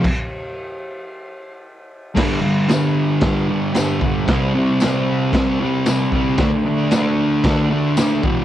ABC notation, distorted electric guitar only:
X:1
M:4/4
L:1/8
Q:1/4=114
K:Glyd
V:1 name="Distorted electric guitar" clef=bass
z8 | [G,,D,G,] [D,G,] [G,,D,G,]2 [G,,D,G,] [D,G,] [G,,D,G,] [D,G,] | [=C,G,=C] [G,C] [C,G,C]2 [C,G,C] [G,C] [C,G,C] [G,C] | [D,A,D] [A,D] [D,A,D]2 [D,A,D] [A,D] [D,A,D] [E,,B,,E,] |]